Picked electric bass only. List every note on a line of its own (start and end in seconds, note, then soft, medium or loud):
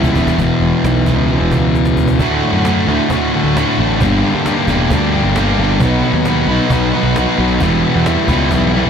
0.00 0.18 C#2 medium
0.16 0.27 E1 medium
0.38 0.49 E1 loud
0.60 0.71 E1 medium
0.84 1.17 B1 loud
1.17 1.38 C#2 medium
1.41 1.51 E1 medium
1.52 2.16 C#2 loud
2.19 2.40 D2 loud
2.53 2.84 F#2 medium
2.88 2.98 D2 loud
3.10 3.31 D2 loud
3.44 3.65 D2 medium
3.79 3.99 A1 loud
4.01 4.22 G1 loud
4.34 4.55 G2 medium
4.67 4.88 E1 loud
4.90 5.21 D2 medium
5.24 5.55 G1 medium
5.58 5.79 G1 loud
5.80 6.01 B1 loud
6.13 6.45 D#2 medium
6.47 6.58 B1 loud
6.70 6.91 B1 loud
7.03 7.25 B1 medium
7.38 7.59 B1 loud
7.61 7.82 E1 loud
7.96 8.16 E2 loud
8.28 8.49 C#2 loud
8.51 8.83 B1 loud